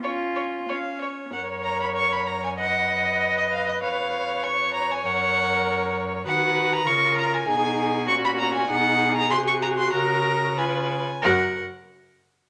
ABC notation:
X:1
M:2/4
L:1/16
Q:1/4=97
K:F#
V:1 name="Violin"
c2 c2 e2 c2 | f2 a b c' b a g | f4- f d e d | e4 c'2 a g |
f6 z2 | f3 a c'2 a g | g4 c' b a g | f3 a ^b c' a b |
a4 g4 | f2 z6 |]
V:2 name="Violin"
c2 c2 c2 c2 | c8 | d8 | c8- |
c8 | B4 A4 | G4 F4 | G8 |
A4 B2 z2 | A2 z6 |]
V:3 name="Viola"
C4 C4 | A8 | B8- | B8 |
A8 | F4 E4 | D4 C4 | D4 F4- |
F4 E2 z2 | F2 z6 |]
V:4 name="Cello" clef=bass
E4 z4 | F,,8- | F,,8 | E,,8 |
F,,8 | D,4 C,4 | B,,4 A,,4 | B,,4 ^B,,4 |
C,6 z2 | F,,2 z6 |]